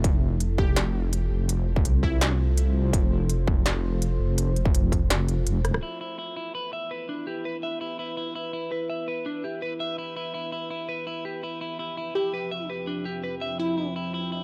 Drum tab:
HH |x---x---x---x---|x---x---x---x---|x---x---x---x---|x-x-x-x-x-x-x-x-|
SD |--------o-------|--------o-------|--------o-------|--------o-----rr|
BD |o-----o---------|---o--o---------|o-----o---------|---o--o---------|

HH |----------------|----------------|----------------|----------------|
SD |----------------|----------------|----------------|----------------|
BD |----------------|----------------|----------------|----------------|

HH |----------------|----------------|
SD |----------------|----------------|
BD |----------------|----------------|